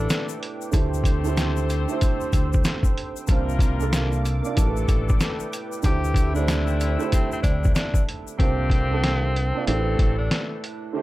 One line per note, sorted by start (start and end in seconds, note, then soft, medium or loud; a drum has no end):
0.00 0.49 A2 medium
0.00 0.40 E3 medium
0.00 0.40 A3 medium
0.00 0.49 A3 medium
0.00 0.25 D4 medium
0.00 0.40 D4 medium
0.00 0.50 D4 medium
0.00 0.50 G4 medium
0.00 0.40 A4 loud
0.00 0.54 B4 loud
0.00 0.72 B4 medium
0.00 3.25 G5 medium
0.00 0.71 D6 medium
0.09 snare loud
0.09 closed hi-hat loud
0.09 shaker medium
0.29 shaker medium
0.43 closed hi-hat medium
0.61 shaker medium
0.71 1.85 D2 loud
0.71 1.04 D3 medium
0.71 1.05 A3 medium
0.71 2.93 A3 medium
0.71 2.93 C4 medium
0.71 1.05 E4 medium
0.71 2.93 G4 medium
0.71 1.06 G4 medium
0.71 2.93 C5 loud
0.71 3.26 C5 medium
0.71 3.26 E6 medium
0.71 kick loud
0.71 closed hi-hat medium
0.71 shaker medium
0.76 1.07 C5 loud
0.94 shaker soft
1.04 kick medium
1.04 closed hi-hat medium
1.04 shaker medium
1.23 1.64 D3 medium
1.23 1.64 A3 medium
1.23 1.65 E4 medium
1.23 1.66 G4 medium
1.23 shaker medium
1.28 1.66 C5 loud
1.37 snare loud
1.37 closed hi-hat medium
1.37 shaker medium
1.57 shaker soft
1.70 closed hi-hat medium
1.70 shaker medium
1.88 2.70 D3 medium
1.88 2.70 A3 medium
1.88 2.71 E4 medium
1.88 2.71 G4 medium
1.88 shaker medium
1.93 2.72 C5 medium
2.01 kick loud
2.01 closed hi-hat loud
2.01 shaker medium
2.21 shaker medium
2.33 2.62 D2 loud
2.33 kick medium
2.33 closed hi-hat medium
2.33 shaker medium
2.53 kick loud
2.53 shaker medium
2.64 snare loud
2.64 closed hi-hat loud
2.64 shaker medium
2.83 kick loud
2.83 shaker medium
2.98 closed hi-hat medium
3.16 shaker medium
3.27 4.40 C2 loud
3.27 3.59 C3 medium
3.27 4.23 G3 medium
3.27 3.60 A#3 medium
3.27 4.55 A#3 medium
3.27 4.24 A#3 medium
3.27 3.61 D4 medium
3.27 4.23 F4 medium
3.27 3.61 F4 medium
3.27 4.24 A#4 medium
3.27 4.55 F5 medium
3.27 5.82 D6 medium
3.27 kick loud
3.27 closed hi-hat medium
3.27 shaker medium
3.32 3.62 C5 medium
3.49 shaker soft
3.59 kick medium
3.59 closed hi-hat medium
3.59 shaker medium
3.78 4.19 C3 medium
3.78 4.19 A#3 medium
3.78 4.20 D4 medium
3.78 4.20 F4 medium
3.78 shaker medium
3.83 4.21 A4 medium
3.93 snare loud
3.93 closed hi-hat loud
3.93 shaker medium
4.12 shaker soft
4.25 closed hi-hat medium
4.25 shaker medium
4.42 4.55 C3 medium
4.42 4.56 A#3 medium
4.42 4.56 D4 medium
4.42 4.57 F4 medium
4.42 shaker medium
4.46 4.58 D5 medium
4.55 4.86 A1 loud
4.55 5.59 A2 medium
4.55 5.51 E3 medium
4.55 5.60 A3 medium
4.55 5.51 A3 medium
4.55 5.61 D4 medium
4.55 5.51 D4 medium
4.55 5.61 G4 medium
4.55 5.51 A4 medium
4.55 5.83 B4 medium
4.55 5.82 G5 medium
4.55 kick loud
4.55 closed hi-hat loud
4.55 shaker medium
4.60 4.66 A#4 medium
4.66 5.65 B4 loud
4.77 shaker medium
4.88 5.17 A1 medium
4.88 kick medium
4.88 closed hi-hat medium
4.88 shaker medium
5.09 kick loud
5.09 shaker medium
5.20 snare loud
5.20 closed hi-hat loud
5.20 shaker medium
5.40 shaker medium
5.53 closed hi-hat medium
5.53 shaker medium
5.72 shaker medium
5.82 6.96 D2 loud
5.82 8.04 C3 medium
5.82 6.15 D3 medium
5.82 8.04 E3 medium
5.82 6.15 A3 medium
5.82 8.04 A3 medium
5.82 6.16 E4 medium
5.82 8.04 E4 loud
5.82 6.33 G4 loud
5.82 6.17 G4 medium
5.82 8.37 C5 medium
5.82 8.37 G5 medium
5.82 8.37 E6 loud
5.82 kick loud
5.82 closed hi-hat medium
5.82 shaker medium
5.87 6.17 C5 medium
6.04 shaker soft
6.14 kick loud
6.14 closed hi-hat medium
6.14 shaker medium
6.34 6.74 D3 medium
6.34 6.75 A3 medium
6.34 7.08 D4 medium
6.34 6.75 E4 medium
6.34 6.76 G4 medium
6.34 shaker medium
6.39 6.77 C5 loud
6.48 snare loud
6.48 closed hi-hat loud
6.48 shaker medium
6.67 shaker soft
6.80 closed hi-hat medium
6.80 shaker medium
6.98 7.80 D3 medium
6.98 7.81 A3 medium
6.98 7.81 E4 medium
6.98 7.82 G4 medium
6.98 shaker medium
7.03 7.82 C5 loud
7.12 7.30 C4 medium
7.12 kick loud
7.12 closed hi-hat loud
7.12 shaker medium
7.32 7.42 C4 medium
7.32 shaker medium
7.43 7.72 D2 loud
7.43 7.72 D4 medium
7.43 kick medium
7.43 closed hi-hat medium
7.43 shaker medium
7.64 kick loud
7.64 shaker medium
7.75 8.04 D4 medium
7.75 snare loud
7.75 closed hi-hat loud
7.75 shaker medium
7.94 kick loud
7.94 shaker medium
8.09 closed hi-hat medium
8.27 shaker medium
8.37 9.51 C2 loud
8.37 8.70 C3 medium
8.37 9.33 D3 medium
8.37 9.33 G3 medium
8.37 8.71 A#3 medium
8.37 9.33 A#3 medium
8.37 9.63 C4 loud
8.37 8.71 D4 medium
8.37 8.72 F4 medium
8.37 9.33 G4 medium
8.37 kick loud
8.37 closed hi-hat medium
8.42 8.73 C5 medium
8.70 kick medium
8.70 closed hi-hat medium
8.89 9.30 C3 medium
8.89 9.30 A#3 medium
8.89 9.31 D4 medium
8.89 9.31 F4 medium
8.94 9.32 A4 medium
9.04 snare loud
9.04 closed hi-hat loud
9.36 closed hi-hat medium
9.52 9.66 C3 medium
9.52 9.66 A#3 medium
9.52 9.67 D4 medium
9.52 9.68 F4 medium
9.57 9.68 D5 medium
9.66 9.96 A1 loud
9.66 10.70 A2 medium
9.66 10.61 E3 medium
9.66 10.71 A3 medium
9.66 10.61 A3 medium
9.66 10.16 C4 medium
9.66 10.61 D4 medium
9.66 10.71 D4 medium
9.66 10.72 G4 medium
9.66 10.61 A4 medium
9.66 closed hi-hat loud
9.71 9.77 A#4 medium
9.77 10.76 B4 loud
9.99 10.28 A1 loud
9.99 kick loud
9.99 closed hi-hat medium
10.18 10.47 D4 medium
10.31 snare loud
10.31 closed hi-hat loud
10.64 closed hi-hat medium
10.93 11.02 D3 medium
10.93 11.02 A3 medium
10.93 11.02 C4 medium
10.93 11.02 E4 medium
10.93 11.02 G4 medium
10.93 11.02 C5 loud
10.98 11.02 C5 medium